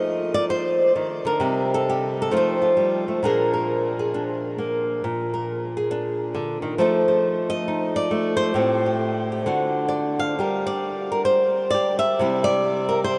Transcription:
nylon-string guitar
Already playing: F3 A3 D#4 D#5
0.34 D5
0.50 C5
0.96 D#3
1.25 D3 A#4
1.40 C3 G3 D#4
1.74 A4
1.90 G4
2.22 A4
2.31 F3 A3 D#4 F4
2.37 C5
2.62 F4
2.77 G3
3.08 A3
3.23 A#2 A#3 D4 G#4 A#4
3.54 A#4
3.99 G#4
4.14 D4
4.58 A#3
5.04 A#2
5.34 A#4
5.77 G#4
5.91 D4
6.35 D3
6.62 D#3
6.78 F3 A3 D#4 A4 C5
7.08 C5
7.50 D#5
7.68 D#4
7.96 D5
8.11 A3
8.37 C5
8.54 A2 A3 C4 G4
8.86 G4
9.32 G4
9.46 D3 D4 F#4
9.88 D5
10.19 F5
10.39 G3 G4 A#4
10.67 D5
11.12 A#4
11.25 C5
11.70 G4 D5
11.99 E5
12.19 C3 G3 E4 G4
12.44 D5
12.89 A#4
13.04 C5

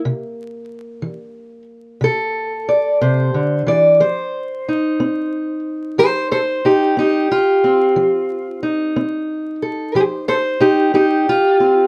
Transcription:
steel-string acoustic guitar
Already playing: A#3
0.05 C3
1.02 E3
2.01 C3 A4
2.69 D5
3.01 C3 C5
3.34 D3
3.66 E3 D5
4.00 F3 C5
4.68 D#4
5.00 C4
5.98 F3 A4 C5
6.31 A4 C5
6.65 D#4 G4
6.97 C4 D#4 G4
7.31 F4
7.64 C4
7.96 F3
8.63 D#4
8.96 C4
9.62 A4
9.95 F3 A4 C5
10.28 A4 C5
10.60 D#4 G4
10.94 C4 D#4 G4
11.29 F4
11.60 C4

